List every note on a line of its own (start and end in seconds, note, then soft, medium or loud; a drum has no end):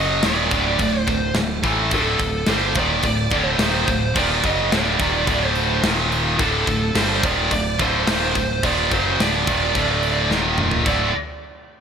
0.00 0.20 F#1 loud
0.00 0.24 F#2 medium
0.00 0.24 C#3 loud
0.00 0.24 F#3 loud
0.00 0.25 D#5 loud
0.23 0.50 D#1 medium
0.23 0.51 D#2 medium
0.23 0.52 A#2 medium
0.23 0.52 D#3 loud
0.23 1.00 D5 medium
0.23 snare loud
0.23 crash medium
0.51 0.78 D1 loud
0.51 0.79 D2 loud
0.51 0.79 A2 loud
0.51 0.80 D3 loud
0.51 kick loud
0.51 crash medium
0.79 1.06 D1 medium
0.79 1.03 D2 medium
0.79 1.03 A2 medium
0.79 kick loud
0.79 crash medium
1.00 1.33 C5 medium
1.07 1.34 D1 medium
1.07 1.30 D2 medium
1.07 1.30 A2 medium
1.07 kick medium
1.07 crash medium
1.34 1.62 D1 medium
1.34 1.59 D2 medium
1.34 1.58 A2 medium
1.34 snare loud
1.34 crash medium
1.63 1.90 A1 loud
1.63 1.92 A2 medium
1.63 1.92 E3 medium
1.63 1.92 A3 loud
1.63 kick loud
1.63 crash medium
1.91 2.18 D1 medium
1.91 2.18 D2 loud
1.91 2.19 A2 loud
1.91 2.20 D3 loud
1.91 2.51 A4 loud
1.91 kick loud
1.91 crash medium
2.19 2.46 D1 medium
2.19 2.42 D2 medium
2.19 2.43 A2 medium
2.19 kick loud
2.19 crash medium
2.46 2.74 G1 loud
2.46 2.76 G2 medium
2.46 2.76 D3 loud
2.46 2.78 C5 medium
2.46 snare loud
2.46 crash medium
2.51 2.76 G3 loud
2.75 3.02 D#1 loud
2.75 3.03 D#2 loud
2.75 3.03 A#2 loud
2.75 3.04 D#3 loud
2.75 3.04 D5 medium
2.75 kick loud
2.75 crash medium
3.03 3.30 D1 medium
3.03 3.26 D2 medium
3.03 3.26 A2 medium
3.03 3.33 D5 loud
3.03 kick medium
3.03 crash medium
3.30 3.57 D1 loud
3.30 3.59 D2 medium
3.30 3.59 A2 medium
3.30 3.60 D3 loud
3.30 4.18 C5 loud
3.30 kick loud
3.30 crash medium
3.58 3.85 D#1 loud
3.58 3.87 D#2 loud
3.58 3.87 A#2 loud
3.58 3.88 D#3 loud
3.58 snare loud
3.58 crash medium
3.88 4.14 D1 medium
3.88 4.11 D2 medium
3.88 4.11 A2 medium
3.88 kick medium
3.88 crash medium
4.14 4.42 D#1 loud
4.14 4.42 D#2 loud
4.14 4.43 A#2 loud
4.14 4.43 D#3 loud
4.14 4.45 D5 loud
4.14 kick loud
4.14 crash loud
4.43 4.70 F#1 loud
4.43 4.71 F#2 medium
4.43 4.71 C#3 loud
4.43 4.71 F#3 loud
4.43 4.73 D#5 medium
4.43 kick loud
4.43 crash medium
4.72 4.98 D1 loud
4.72 4.99 D2 medium
4.72 5.00 A2 loud
4.72 5.00 D3 loud
4.72 5.47 D5 medium
4.72 snare loud
4.72 crash medium
4.99 5.26 D#1 loud
4.99 5.27 D#2 loud
4.99 5.28 A#2 loud
4.99 5.28 D#3 loud
4.99 kick loud
4.99 crash medium
5.27 5.80 D1 loud
5.27 5.83 D2 loud
5.27 5.83 A2 loud
5.27 5.84 D3 loud
5.27 kick loud
5.27 crash medium
5.47 5.81 C5 medium
5.55 crash medium
5.83 6.36 D#1 loud
5.83 6.39 D#2 loud
5.83 6.39 A#2 medium
5.83 6.39 D#3 loud
5.83 snare loud
5.83 crash medium
6.12 crash medium
6.39 6.66 D1 loud
6.39 6.66 D2 loud
6.39 6.66 A2 loud
6.39 6.67 D3 loud
6.39 6.97 A4 loud
6.39 kick loud
6.39 crash medium
6.67 6.93 D1 medium
6.67 6.90 D2 medium
6.67 6.90 A2 medium
6.67 kick medium
6.67 crash medium
6.95 7.21 G1 medium
6.95 7.23 G2 loud
6.95 7.24 D3 loud
6.95 7.23 G3 medium
6.95 7.22 C5 loud
6.95 snare loud
6.95 crash medium
7.23 7.49 D#1 medium
7.23 7.51 D#2 loud
7.23 7.51 A#2 loud
7.23 7.52 D#3 loud
7.23 7.52 D5 medium
7.23 kick loud
7.23 crash medium
7.51 7.77 D1 medium
7.51 7.74 D2 medium
7.51 7.74 A2 medium
7.51 7.81 D5 loud
7.51 kick medium
7.51 crash medium
7.79 8.06 D1 loud
7.79 8.07 D2 medium
7.79 8.07 A2 loud
7.79 8.08 D3 loud
7.79 8.64 C5 loud
7.79 kick loud
7.79 crash medium
8.07 8.33 D#1 loud
8.07 8.35 D#2 medium
8.07 8.35 A#2 loud
8.07 8.35 D#3 loud
8.07 snare loud
8.07 crash loud
8.35 8.61 D1 medium
8.35 8.58 D2 medium
8.35 8.58 A2 medium
8.35 kick medium
8.35 crash medium
8.63 8.89 D#1 loud
8.63 8.90 D#2 loud
8.63 8.91 A#2 loud
8.63 8.91 D#3 loud
8.63 8.93 D5 loud
8.63 kick loud
8.63 crash medium
8.91 9.17 F#1 loud
8.91 9.19 F#2 medium
8.91 9.19 C#3 medium
8.91 9.19 F#3 loud
8.91 9.21 C5 loud
8.91 kick loud
8.91 crash medium
9.19 9.45 D1 loud
9.19 9.47 D2 loud
9.19 9.47 A2 loud
9.19 9.47 D3 loud
9.19 10.28 D5 medium
9.19 snare loud
9.19 crash medium
9.47 9.73 D#1 loud
9.47 9.74 D#2 medium
9.47 9.74 A#2 medium
9.47 9.74 D#3 loud
9.47 kick loud
9.47 crash medium
9.75 10.27 D1 medium
9.75 10.30 D2 loud
9.75 10.30 A2 loud
9.75 10.31 D3 loud
9.75 kick loud
9.75 crash medium
10.03 crash medium
10.30 10.82 D#1 loud
10.30 10.84 D#2 medium
10.30 10.85 A#2 medium
10.30 10.85 D#3 loud
10.30 snare medium
10.58 mid tom medium
10.71 floor tom medium
10.85 11.12 D1 loud
10.85 11.08 D2 medium
10.85 11.08 A2 loud
10.85 11.08 D3 loud
10.85 11.08 A3 loud
10.85 11.08 F#4 loud
10.85 11.13 D5 medium
10.85 kick loud
10.85 crash loud